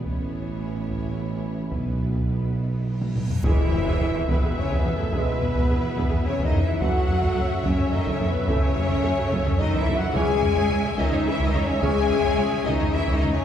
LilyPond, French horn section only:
\new Staff \with { instrumentName = "French horn section" } { \time 3/4 \key e \major \tempo 4 = 107 <a cis'>2. | <fis b>2~ <fis b>8 r8 | e'4. b8 \tuplet 3/2 { cis'8 b8 a8 } | b2 \tuplet 3/2 { cis'8 dis'8 e'8 } |
fis'4. cis'8 \tuplet 3/2 { dis'8 cis'8 b8 } | cis'2 \tuplet 3/2 { dis'8 e'8 fis'8 } | gis'4. dis'8 \tuplet 3/2 { e'8 dis'8 cis'8 } | gis'4. dis'8 \tuplet 3/2 { e'8 dis'8 cis'8 } | }